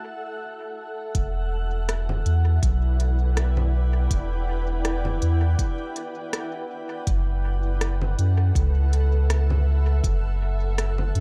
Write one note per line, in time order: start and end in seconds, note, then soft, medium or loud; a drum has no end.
0.00 3.14 A4 medium
0.00 3.01 E5 medium
0.00 11.20 F#5 medium
1.15 2.23 E1 loud
1.15 8.09 E4 medium
1.15 kick loud
1.15 closed hi-hat medium
1.66 9.46 B4 medium
1.89 cross-stick medium
1.89 closed hi-hat medium
2.07 7.07 D5 medium
2.07 low conga medium
2.26 2.59 E2 medium
2.26 closed hi-hat soft
2.55 7.08 G5 medium
2.63 4.08 B1 medium
2.63 kick loud
2.63 closed hi-hat medium
3.00 closed hi-hat soft
3.37 cross-stick medium
3.37 closed hi-hat medium
3.57 low conga medium
4.11 5.19 E1 loud
4.11 kick loud
4.11 closed hi-hat medium
4.85 cross-stick medium
4.85 closed hi-hat medium
5.05 low conga medium
5.22 5.55 E2 medium
5.22 closed hi-hat soft
5.59 kick loud
5.59 closed hi-hat medium
5.96 closed hi-hat soft
6.33 cross-stick medium
6.33 closed hi-hat medium
7.07 8.15 F#1 loud
7.07 11.20 A4 medium
7.07 kick loud
7.07 closed hi-hat medium
7.81 cross-stick medium
7.81 closed hi-hat medium
8.02 low conga medium
8.19 8.52 F#2 medium
8.19 closed hi-hat soft
8.27 11.20 E5 medium
8.55 10.00 C#2 medium
8.55 kick loud
8.55 closed hi-hat medium
8.93 closed hi-hat soft
9.30 cross-stick medium
9.30 closed hi-hat medium
9.50 low conga medium
10.04 11.12 F#1 loud
10.04 kick loud
10.04 closed hi-hat medium
10.78 cross-stick medium
10.78 closed hi-hat soft
10.98 low conga medium
11.15 11.20 F#2 medium
11.15 closed hi-hat soft